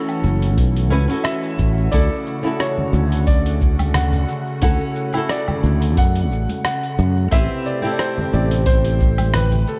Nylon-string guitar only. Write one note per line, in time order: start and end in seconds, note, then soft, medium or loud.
0.00 0.87 C#4 medium
0.00 0.88 E4 medium
0.00 0.89 F#4 medium
0.00 0.89 A4 loud
0.90 1.06 C#4 medium
0.90 1.07 E4 medium
0.90 1.07 F#4 medium
0.90 1.07 B4 medium
1.08 1.88 C#4 medium
1.08 1.89 E4 medium
1.08 1.89 F#4 medium
1.12 1.90 A4 medium
1.92 2.40 C#3 medium
1.92 2.40 E4 medium
1.92 2.41 F#4 medium
1.92 2.41 A4 loud
2.43 4.58 C#3 medium
2.43 4.58 E4 medium
2.43 4.59 F#4 medium
2.47 4.60 A4 loud
4.62 5.10 C#4 medium
4.62 5.10 E4 medium
4.62 5.10 F#4 medium
4.62 5.11 A4 loud
5.13 7.27 C#3 medium
5.13 7.28 E4 medium
5.13 7.29 F#4 medium
5.17 7.30 A4 loud
7.31 7.79 C4 medium
7.31 7.79 E4 medium
7.31 7.80 G4 medium
7.31 7.80 B4 loud
7.82 9.79 C4 medium
7.82 9.79 E4 medium
7.82 9.79 G4 medium
7.86 9.79 A4 medium